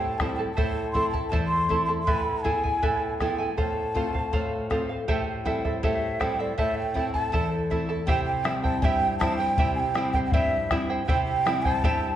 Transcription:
Already playing: A2 E4 G4 A4 C5 G5 A5
0.18 G3 C4 E4 A4 C5 A5, bombo rim, bombo low
0.35 G5
0.39 E4 A4 A5
0.54 E4 A4 C5 E5 A5
0.58 A2, bombo low
0.91 A3 C4 E5 C6
0.95 E4 A4 A5, bombo low
1.10 A5
1.14 E4 A4, bombo low
1.28 E2 C5 A5
1.32 E4 A4 E5 A5, bombo low
1.47 C6
1.69 A3 C4 E4 A4 E5 A5, bombo low
1.85 A5 C6
1.89 E4 A4
2.03 B5
2.07 A2 E4 A4 B4 E5 G#5, bombo low
2.43 B3 E4 G#4 A4 E5 G#5, bombo low
2.64 E4 A4 G#5, bombo low
2.82 A2 E4 A4 B4 E5 G#5, bombo low
3.17 G#3 E4 E5 G5, bombo rim, bombo low
3.21 B3 E4 A4 G#5
3.38 E4 A4 G#5
3.55 A2 A4 C5 F5 A5, bombo low
3.94 A3 C4 F4 A4 C5 F5, bombo low
4.14 C5 F5, bombo low
4.33 A2 A4 C5 F5, bombo low
4.70 A3 C4 F4 A4 C5 F5, bombo rim, bombo low
4.89 C5 F5
5.08 A2 G4 A4 C5 E5 G5, bombo low
5.45 G3 C4 E4 A4 C5 E5 G5, bombo low
5.65 A4 C5 E5, bombo low
5.83 A2 G4 A4 C5 E5 F5 G5, bombo low
6.20 G3 C4 E4 A4 C5 E5 G5, bombo rim, bombo low
6.39 A4 C5 D5 E5
6.57 A2 E4 A4 C5 E5 A5, bombo low
6.77 G5
6.94 A3 C4 E4 A4 E5 A5, bombo low
7.13 E4 A4 A5, bombo low
7.32 E2 E4 A4 C5 E5 A5, bombo low
7.70 A3 C4 E4 A4 E5 A5, bombo low
7.89 E4 A4 A5
8.07 C3 E4 G4 C5 E5 G5, bombo low
8.24 G5
8.44 G3 C4 E4 C5 E5 G5, bombo rim
8.62 E4 C5 G5 A5, bombo low
8.81 G2 E4 G4 C5 E5 G5 G#5, bombo low
9.18 G3 C4 E4 C5 E5 A5, bombo rim, bombo low
9.23 G5
9.37 G5
9.41 E4 C5
9.58 C3 E4 G4 C5 E5 G5, bombo low
9.75 G#5
9.79 G5
9.94 G3 C4 E4 C5 E5 G5, bombo rim
10.12 E4 C5 G5, bombo low
10.25 G5
10.31 G2 E4 G4 C5 E5 F5 G5, bombo low
10.35 E5
10.71 G3 C4 E4 C5 E5 G5, bombo rim, bombo low
10.90 E4 C5 G5
11.06 C3 E4 G4 C5 E5 G5, bombo low
11.24 G5
11.46 G3 C4 E4 C5 E5 G5, bombo rim
11.62 G5 A5, bombo low
11.66 E4 C5
11.84 G2 E4 G4 C5 E5 G5, bombo low

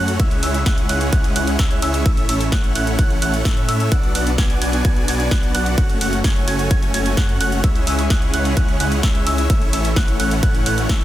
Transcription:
Already playing: F#2 A3 C#4 F#4 C#5 F#5 F#6
0.08 closed hi-hat
0.20 C#2 C#3 G#3 C#4 E4 G#4 C#5 E5 E6, kick, closed hi-hat, ride
0.31 closed hi-hat
0.43 C#2 G#3 C#4 E4 C#5 E5 E6, open hi-hat, ride
0.54 closed hi-hat
0.66 C#2 G#3 C#4 E4 C#5 F#5 F#6, kick, snare, closed hi-hat, ride
0.78 closed hi-hat
0.89 C#2 G#3 C#4 E4 C#5 F#5 F#6, open hi-hat, ride
1.01 closed hi-hat
1.13 C#2 G#3 C#4 E4 C#5 F#5 F#6, kick, closed hi-hat, ride
1.24 closed hi-hat
1.36 C#2 G#3 C#4 E4 C#5 F#5 F#6, open hi-hat, ride
1.47 closed hi-hat
1.59 C#2 G#3 C#4 E4 C#5 E5 E6, kick, snare, closed hi-hat, ride
1.71 closed hi-hat
1.82 C#2 G#3 C#4 E4 C#5 E5 E6, open hi-hat, ride
1.94 closed hi-hat
2.06 A1 A3 C#4 E4 C#5 E5 E6, kick, closed hi-hat, ride
2.17 closed hi-hat
2.29 A1 A3 C#4 E4 C#5 E5 E6, open hi-hat, ride
2.41 closed hi-hat
2.52 A1 A3 C#4 E4 C#5 F#5 F#6, kick, snare, closed hi-hat, ride
2.64 closed hi-hat
2.75 A1 A3 C#4 E4 C#5 F#5 F#6, open hi-hat, ride
2.87 closed hi-hat
2.99 A1 A3 C#4 E4 C#5 F#5 F#6, kick, closed hi-hat, ride
3.10 closed hi-hat
3.22 A1 A3 C#4 E4 C#5 F#5 F#6, open hi-hat, ride
3.34 closed hi-hat
3.45 A2 A3 C#4 E4 C#5 E5 E6, kick, snare, closed hi-hat, ride
3.57 closed hi-hat
3.68 A2 A3 C#4 E4 C#5 E5 E6, open hi-hat, ride
3.80 closed hi-hat
3.92 B1 B3 D4 F#4 D5 F#5 F#6, kick, closed hi-hat, ride
4.04 closed hi-hat
4.15 B1 B3 D4 F#4 D5 F#5 F#6, open hi-hat, ride
4.27 closed hi-hat
4.38 B1 B3 D4 F#4 D5 G#5 G#6, kick, snare, closed hi-hat, ride
4.50 closed hi-hat
4.62 B1 B3 D4 F#4 D5 G#5 G#6, open hi-hat, ride
4.73 closed hi-hat
4.85 B1 B3 D4 F#4 D5 G#5 G#6, kick, closed hi-hat, ride
4.96 closed hi-hat
5.08 B1 B3 D4 F#4 D5 G#5 G#6, open hi-hat, ride
5.20 closed hi-hat
5.31 B1 B3 D4 F#4 D5 F#5 F#6, kick, snare, closed hi-hat, ride
5.43 closed hi-hat
5.54 B1 B3 D4 F#4 D5 F#5 F#6, open hi-hat, ride
5.66 closed hi-hat
5.78 F#1 A3 C#4 F#4 C#5 F#5 F#6, kick, closed hi-hat, ride
5.89 closed hi-hat
6.01 F#1 A3 C#4 F#4 C#5 F#5 F#6, open hi-hat, ride
6.13 closed hi-hat
6.24 F#1 A3 C#4 F#4 C#5 G#5 G#6, kick, snare, closed hi-hat, ride
6.36 closed hi-hat
6.48 F#1 A3 C#4 F#4 C#5 G#5 G#6, open hi-hat, ride
6.59 closed hi-hat
6.71 F#1 A3 C#4 F#4 C#5 G#5 G#6, kick, closed hi-hat, ride
6.82 closed hi-hat
6.94 F#1 A3 C#4 F#4 C#5 G#5 G#6, open hi-hat, ride
7.06 closed hi-hat
7.17 F#2 A3 C#4 F#4 C#5 F#5 F#6, kick, snare, closed hi-hat, ride
7.29 closed hi-hat
7.41 F#1 A3 C#4 F#4 C#5 F#5 F#6, open hi-hat, ride
7.52 closed hi-hat
7.64 C#2 C#3 G#3 C#4 E4 G#4 C#5 E5 E6, kick, closed hi-hat, ride
7.75 closed hi-hat
7.87 C#2 G#3 C#4 E4 C#5 E5 E6, open hi-hat, ride
7.99 closed hi-hat
8.10 C#2 G#3 C#4 E4 C#5 F#5 F#6, kick, snare, closed hi-hat, ride
8.22 closed hi-hat
8.34 C#2 G#3 C#4 E4 C#5 F#5 F#6, open hi-hat, ride
8.45 closed hi-hat
8.57 C#2 G#3 C#4 E4 C#5 F#5 F#6, kick, closed hi-hat, ride
8.69 closed hi-hat
8.80 C#2 G#3 C#4 E4 C#5 F#5 F#6, open hi-hat, ride
8.92 closed hi-hat
9.03 C#2 G#3 C#4 E4 C#5 E5 E6, kick, snare, closed hi-hat, ride
9.15 closed hi-hat
9.27 C#2 G#3 C#4 E4 C#5 E5 E6, open hi-hat, ride
9.38 closed hi-hat
9.50 A1 E3 A3 C#4 E4 C#5 E5 E6, kick, closed hi-hat, ride
9.62 closed hi-hat
9.73 A1 A3 C#4 E4 C#5 E5 E6, open hi-hat, ride
9.85 closed hi-hat
9.96 A1 A3 C#4 E4 C#5 F#5 F#6, kick, snare, closed hi-hat, ride
10.08 closed hi-hat
10.20 A1 A3 C#4 E4 C#5 F#5 F#6, open hi-hat, ride
10.31 closed hi-hat
10.43 A1 A3 C#4 E4 C#5 F#5 F#6, kick, closed hi-hat, ride
10.55 closed hi-hat
10.66 A1 A3 C#4 E4 C#5 F#5 F#6, open hi-hat, ride
10.78 closed hi-hat
10.89 A1 A3 C#4 E4 C#5 E5 E6, kick, snare, closed hi-hat, ride
11.01 closed hi-hat

